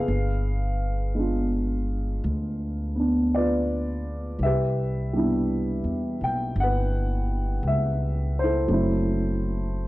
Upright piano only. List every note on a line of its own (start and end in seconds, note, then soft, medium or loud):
0.00 2.96 G#4 medium
0.00 2.97 B4 medium
0.00 2.96 F5 medium
1.15 4.39 G#3 soft
1.15 2.94 B3 soft
1.15 2.98 D4 soft
1.20 3.36 F4 soft
2.96 4.39 B3 soft
2.96 4.41 D4 soft
3.35 4.39 F4 medium
3.35 4.39 B4 soft
3.35 4.45 D5 medium
4.43 6.54 G4 medium
4.43 6.54 B4 soft
4.43 6.28 E5 medium
5.13 8.70 B2 soft
5.13 8.69 G3 soft
5.13 8.70 D4 soft
5.18 8.42 E4 soft
6.24 6.58 G5 medium
6.60 8.69 B4 medium
6.60 7.61 F#5 medium
7.67 8.40 E5 medium
8.39 9.88 C5 medium
8.43 8.71 E4 soft
8.43 9.88 A4 soft
8.68 9.88 F#3 soft
8.68 9.88 A3 soft
8.68 9.88 C4 soft
8.73 9.88 E4 medium